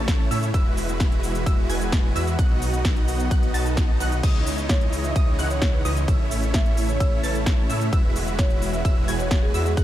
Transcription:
Already playing: A1 C#3 A3 C#4 E4 C#5 A5 A6
0.08 kick, snare, closed hi-hat, ride, shaker
0.31 A2 A3 C#4 E4 C#5 E5 E6, open hi-hat, shaker
0.43 closed hi-hat, shaker
0.54 E1 E3 G#3 E4 F#4 B4 E5 E6, kick, closed hi-hat, ride, shaker
0.77 open hi-hat, shaker
0.89 closed hi-hat, shaker
1.00 kick, snare, closed hi-hat, ride, shaker
1.12 closed hi-hat
1.23 open hi-hat, shaker
1.35 closed hi-hat, shaker
1.46 E1 G#3 E4 F#4 B4 E5 E6, kick, closed hi-hat, ride, shaker
1.70 E1 G#3 E4 F#4 B4 G#5 G#6, open hi-hat, shaker
1.81 closed hi-hat, shaker
1.92 kick, snare, closed hi-hat, ride, shaker
2.16 E2 G#3 E4 F#4 B4 E5 E6, open hi-hat, shaker
2.27 closed hi-hat, shaker
2.39 B1 D#3 B3 D#4 F#4 D#5 F#5 F#6, kick, closed hi-hat, ride, shaker
2.62 open hi-hat, shaker
2.73 closed hi-hat, shaker
2.85 kick, snare, closed hi-hat, ride, shaker
2.96 closed hi-hat
3.08 open hi-hat, shaker
3.20 closed hi-hat, shaker
3.31 B1 B3 D#4 F#4 D#5 F#6, kick, closed hi-hat, ride, shaker
3.43 closed hi-hat
3.54 B1 B3 D#4 F#4 D#5 A5 A6, open hi-hat, shaker
3.66 closed hi-hat, shaker
3.77 kick, snare, closed hi-hat, ride, shaker
4.00 B1 B3 D#4 F#4 D#5 F#5 F#6, open hi-hat, shaker
4.12 closed hi-hat, shaker
4.23 C#2 C#3 E3 G#3 D#4 E4 C#5 D#5 D#6, kick, closed hi-hat, crash, ride, shaker
4.47 open hi-hat, shaker
4.58 closed hi-hat, shaker
4.69 C#5, kick, snare, closed hi-hat, ride, shaker
4.81 closed hi-hat
4.93 open hi-hat, shaker
5.04 E5, closed hi-hat, shaker
5.16 C#2 G#3 D#6, kick, closed hi-hat, ride, shaker
5.39 C#2 G#3 D#4 E4 C#5 F#5 F#6, open hi-hat, shaker
5.50 C#5, closed hi-hat, shaker
5.62 kick, snare, closed hi-hat, ride, shaker
5.73 B4
5.85 C#2 G#3 D#4 E4 B4 C#5 D#5 D#6, open hi-hat, shaker
5.97 closed hi-hat, shaker
6.08 A1 A3 C#4 E4 C#5 E5 E6, kick, closed hi-hat, ride, shaker
6.31 open hi-hat, shaker
6.43 closed hi-hat, shaker
6.54 E5, kick, snare, closed hi-hat, ride, shaker
6.66 closed hi-hat
6.77 open hi-hat, shaker
6.89 C#5, closed hi-hat, shaker
7.00 A1 A3 C#4 E4 C#5 E6, kick, closed hi-hat, ride, shaker
7.23 A1 A3 C#4 E4 B4 C#5 A5 A6, open hi-hat, shaker
7.35 closed hi-hat, shaker
7.46 kick, snare, closed hi-hat, ride, shaker
7.70 A2 A3 C#4 E4 C#5 E5 E6, open hi-hat, shaker
7.81 closed hi-hat, shaker
7.93 E1 E3 G#3 E4 F#4 B4 E6, kick, closed hi-hat, ride, shaker
8.16 open hi-hat, shaker
8.27 closed hi-hat, shaker
8.39 C#5, kick, snare, closed hi-hat, ride, shaker
8.50 closed hi-hat
8.62 open hi-hat, shaker
8.73 E5, closed hi-hat, shaker
8.85 E1 E4 F#4 E6, kick, closed hi-hat, ride, shaker
9.08 E1 G#3 E4 F#4 B4 G#5 G#6, open hi-hat, shaker
9.19 C#5, closed hi-hat, shaker
9.31 kick, snare, closed hi-hat, ride, shaker
9.43 G#4
9.54 E2 G#3 E4 F#4 G#4 B4 E5 E6, open hi-hat, shaker
9.66 G#4, closed hi-hat, shaker
9.77 B1 D#3 B3 D#4 F#4 G#4 D#5 F#5 F#6, kick, closed hi-hat, ride, shaker

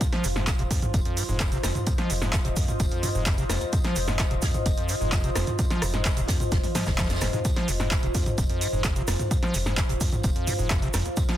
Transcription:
Already playing: F4 C5 F5
0.01 F2, kick, closed hi-hat, tambourine, cabasa
0.12 F3, snare, closed hi-hat
0.24 F1 G#2, open hi-hat, tambourine, cabasa
0.36 G#2, snare, cabasa
0.47 F2, kick, snare, clap, closed hi-hat, tambourine, cabasa
0.59 D#1 C3, closed hi-hat
0.65 D#5
0.71 F2, kick, open hi-hat, tambourine, cabasa
0.82 D#2, closed hi-hat, mid tom, cabasa
0.94 F1 F2, kick, closed hi-hat, tambourine, cabasa
1.05 F2, closed hi-hat
1.17 G#2, open hi-hat, tambourine, cabasa
1.29 F1 G#2, cabasa
1.40 F2, kick, snare, clap, closed hi-hat, tambourine, cabasa
1.52 C3, closed hi-hat, cabasa
1.63 F1 F2, cross-stick, snare, open hi-hat, tambourine, cabasa
1.75 D#2, closed hi-hat, mid tom, cabasa
1.87 F2, kick, closed hi-hat, tambourine, cabasa
1.98 F3, snare, closed hi-hat
2.10 F1 G#2, open hi-hat, tambourine, cabasa
2.22 G#2, snare, cabasa
2.33 F2, kick, snare, clap, closed hi-hat, tambourine, cabasa
2.45 D#1 C3, closed hi-hat
2.56 F2, kick, open hi-hat, tambourine, cabasa
2.68 D#2, closed hi-hat, mid tom, cabasa
2.80 F1 F2, kick, closed hi-hat, tambourine, cabasa
2.92 F2, closed hi-hat
3.03 G#2, mid tom, open hi-hat, tambourine, cabasa
3.15 F1 G#2, cabasa
3.26 F2, kick, snare, clap, closed hi-hat, tambourine, cabasa
3.38 C3, closed hi-hat, cabasa
3.49 F1 F2, cross-stick, snare, open hi-hat, tambourine, cabasa
3.61 D#2, closed hi-hat, cabasa
3.73 F2, kick, closed hi-hat, tambourine, cabasa
3.84 F3, snare, closed hi-hat
3.96 F1 G#2, open hi-hat, tambourine, cabasa
4.07 G#2, snare, cabasa
4.19 F2, kick, snare, clap, closed hi-hat, tambourine, cabasa
4.31 D#1 C3, closed hi-hat
4.42 F2, kick, snare, open hi-hat, tambourine, cabasa
4.54 D#2, closed hi-hat, mid tom, cabasa
4.66 F1 F2, kick, closed hi-hat, tambourine, cabasa
4.78 F2, closed hi-hat
4.88 G#2, open hi-hat, tambourine, cabasa
5.01 F1 G#2, cabasa
5.12 F2, kick, snare, clap, closed hi-hat, tambourine, cabasa
5.24 C3, closed hi-hat, cabasa
5.35 F1 F2, cross-stick, snare, open hi-hat, tambourine, cabasa
5.47 D#2, closed hi-hat, mid tom, cabasa
5.59 F2, kick, closed hi-hat, tambourine, cabasa
5.70 F3, snare, closed hi-hat, cabasa
5.82 F1 G#2, cross-stick, open hi-hat, tambourine, cabasa
5.93 G#2, snare, closed hi-hat, cabasa
6.05 F2, kick, snare, clap, closed hi-hat, tambourine, cabasa
6.17 D#1 C3, closed hi-hat, cabasa
6.28 F2, kick, snare, open hi-hat, tambourine, cabasa
6.40 D#2, closed hi-hat, mid tom, cabasa
6.52 F1 F2, kick, snare, closed hi-hat, high tom, tambourine, cabasa
6.64 F2, open hi-hat, high tom, cabasa
6.75 F3, snare, mid tom, open hi-hat, tambourine, cabasa
6.86 F1 F3, kick, snare, mid tom, tambourine, cabasa
6.98 F3, kick, snare, clap, closed hi-hat, mid tom, tambourine, cabasa
7.04 snare, tambourine
7.09 F2, snare, closed hi-hat, tambourine, cabasa
7.15 snare, tambourine
7.21 F1 D#2, cross-stick, snare, mid tom, open hi-hat, tambourine, cabasa
7.33 G#2, closed hi-hat, mid tom, cabasa
7.45 F2, kick, closed hi-hat, tambourine, cabasa
7.56 F3, snare, closed hi-hat
7.68 F1 G#2, open hi-hat, tambourine, cabasa
7.80 G#2, snare, cabasa
7.91 F2, kick, snare, clap, closed hi-hat, tambourine, cabasa
8.03 D#1 C3, closed hi-hat
8.08 F5
8.14 F2, kick, open hi-hat, tambourine, cabasa
8.26 D#2, closed hi-hat, mid tom, cabasa
8.38 F1 F2, kick, closed hi-hat, tambourine, cabasa
8.49 F2, closed hi-hat
8.61 G#2, open hi-hat, tambourine, cabasa
8.73 F1 G#2, cabasa
8.84 F2, kick, snare, clap, closed hi-hat, tambourine, cabasa
8.96 C3, closed hi-hat, cabasa
9.07 F1 F2, cross-stick, snare, open hi-hat, tambourine, cabasa
9.19 D#2, closed hi-hat, mid tom, cabasa
9.31 F2, kick, closed hi-hat, tambourine, cabasa
9.43 F3, snare, closed hi-hat
9.54 F1 G#2, open hi-hat, tambourine, cabasa
9.66 G#2, snare, cabasa
9.77 F2, kick, snare, clap, closed hi-hat, tambourine, cabasa
9.89 D#1 C3, closed hi-hat
10.00 F2, kick, open hi-hat, tambourine, cabasa
10.12 D#2, closed hi-hat, mid tom, cabasa
10.23 F1 F2, kick, closed hi-hat, tambourine, cabasa
10.36 F2, closed hi-hat
10.47 G#2, mid tom, open hi-hat, tambourine, cabasa
10.59 F1 G#2, cabasa
10.70 F2, kick, snare, clap, closed hi-hat, tambourine, cabasa
10.82 C3, closed hi-hat, cabasa
10.94 F1 F2, cross-stick, snare, open hi-hat, tambourine, cabasa
11.05 D#2, closed hi-hat, cabasa
11.17 F2, kick, closed hi-hat, tambourine, cabasa
11.28 F3, snare, closed hi-hat

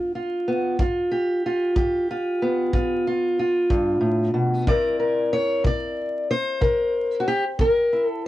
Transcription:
Already playing: G2 B3 F4
0.15 F4
0.48 B3
0.79 G2 F4, kick
1.12 G4
1.46 F4
1.76 G2 G4, kick
2.11 F4
2.42 B3
2.73 G2 F4, kick
3.07 F4
3.39 F4
3.70 G2, kick
4.01 A2
4.34 B2
4.67 C3 C4 E4 A#4 D5, kick
5.00 A#4
5.33 C#5
5.64 C3 D5, kick
6.31 C5
6.61 C3 A#4, kick
7.20 F#4
7.28 G4
7.59 C3 A#4, kick
7.93 E4
8.06 A4

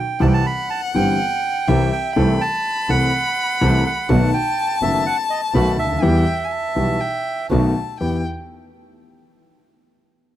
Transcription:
Already playing: G5
0.20 C2 C3 E3 G3 C4 G4 F#5 A5
0.27 G5
0.34 A5
0.46 B5
0.70 A5
0.94 G1 G2 E3 G3 C4 G4 G5
1.68 C2 C3 E3 G3 C4 G4 E5
1.92 G5
2.15 C2 C3 E3 A3 C4 A4 B5
2.41 A5
2.89 C2 C3 E3 A3 C4 A4 F#5
3.61 C2 C3 E3 A3 C4 A4
3.86 F#5
4.09 B1 B2 D#3 A3 B3 F#4 A5
4.34 G5
4.82 F#1 F#2 D#3 A3 B3 F#4 E5
5.06 F#5
5.30 D#5
5.54 B1 B2 D#3 A3 B3 F#4 B5
5.78 D2 E5
5.85 C#2
5.91 D2
5.96 D#2
6.02 E2 E3 G3 B3 G4 G5
6.45 G#5
6.51 A5
6.76 B1 B2 E3 G3 B3 G4
7.00 G5
7.50 B1 B2 D#3 A3 B3 F#4 A5
8.00 E2 B3 E4 G4 G5

